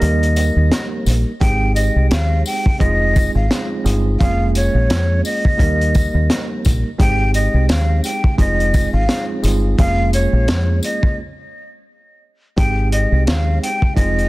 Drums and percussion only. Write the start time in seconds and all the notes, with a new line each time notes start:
0.02 closed hi-hat
0.23 closed hi-hat
0.36 closed hi-hat, tambourine
0.72 snare, closed hi-hat
1.06 closed hi-hat, tambourine
1.41 kick, closed hi-hat
1.76 closed hi-hat, tambourine
2.11 snare, closed hi-hat
2.46 open hi-hat, tambourine
2.66 kick
2.80 kick, closed hi-hat
3.16 kick, closed hi-hat, tambourine
3.51 snare, closed hi-hat
3.86 closed hi-hat, tambourine
4.21 kick, closed hi-hat
4.55 closed hi-hat, tambourine
4.90 snare, closed hi-hat
5.25 open hi-hat, tambourine
5.45 kick
5.59 kick, closed hi-hat
5.81 closed hi-hat
5.94 kick, closed hi-hat, tambourine
6.30 snare, closed hi-hat
6.65 kick, closed hi-hat, tambourine
7.00 kick, closed hi-hat
7.34 closed hi-hat, tambourine
7.69 snare, closed hi-hat
8.04 closed hi-hat, tambourine
8.24 kick
8.38 kick, closed hi-hat
8.60 closed hi-hat
8.74 kick, closed hi-hat, tambourine
9.09 snare, closed hi-hat
9.44 closed hi-hat, tambourine
9.79 kick, closed hi-hat
10.13 closed hi-hat, tambourine
10.48 snare, closed hi-hat
10.83 closed hi-hat, tambourine
11.03 kick
12.58 kick, closed hi-hat
12.92 closed hi-hat
13.27 snare, closed hi-hat
13.64 closed hi-hat
13.82 kick
13.97 kick, closed hi-hat
14.19 closed hi-hat